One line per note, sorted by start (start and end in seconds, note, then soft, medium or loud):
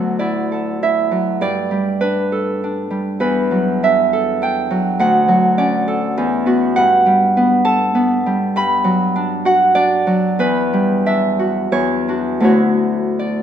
0.00 1.44 D2 soft
0.00 1.10 F#3 soft
0.00 0.51 A4 soft
0.19 0.81 E4 soft
0.19 1.40 D5 medium
0.52 2.31 A4 soft
0.83 1.45 E4 soft
0.83 1.45 E5 medium
1.11 1.44 F#3 soft
1.41 3.22 G2 soft
1.41 5.32 D5 medium
1.71 2.89 G3 soft
2.01 2.62 D4 soft
2.01 3.19 B4 soft
2.32 4.12 A4 soft
2.64 3.82 D4 soft
2.90 5.03 G3 soft
3.20 5.04 E2 soft
3.20 5.04 B4 medium
3.51 4.69 F#3 soft
3.83 4.41 D4 soft
3.83 5.04 E5 medium
4.13 5.87 A4 soft
4.42 8.32 D4 soft
4.42 5.03 G5 medium
4.70 5.27 F#3 soft
4.99 6.20 D2 soft
4.99 6.75 F#5 medium
5.28 8.83 F#3 soft
5.58 6.20 C#4 soft
5.58 9.48 D5 medium
5.88 6.20 A4 soft
6.17 6.80 E2 medium
6.46 7.36 B3 soft
6.46 9.44 F#4 soft
6.76 8.55 G2 medium
6.76 9.45 F#5 medium
7.06 8.25 G3 soft
7.37 7.94 B3 soft
7.65 8.58 A4 soft
7.65 8.58 A5 medium
7.95 11.85 B3 soft
8.26 8.58 G3 soft
8.56 10.42 G2 medium
8.56 12.47 B5 medium
8.84 10.06 F#3 soft
9.16 9.74 D4 soft
9.45 11.38 F#4 soft
9.45 13.36 F#5 medium
9.75 11.05 D4 soft
9.75 13.18 D5 medium
10.07 13.43 F#3 soft
10.39 11.71 E2 medium
10.39 12.48 B4 medium
10.73 11.76 G3 soft
11.06 12.07 D4 soft
11.06 13.43 E5 medium
11.39 12.08 F#4 soft
11.72 12.47 E2 soft
11.72 12.43 C#5 medium
12.08 13.43 D4 soft
12.08 12.43 F#4 soft
12.40 13.43 D2 soft
12.40 13.43 A3 soft
12.40 13.43 E4 soft
12.40 13.43 F#4 soft
12.44 13.43 C#5 soft
13.19 13.43 D5 soft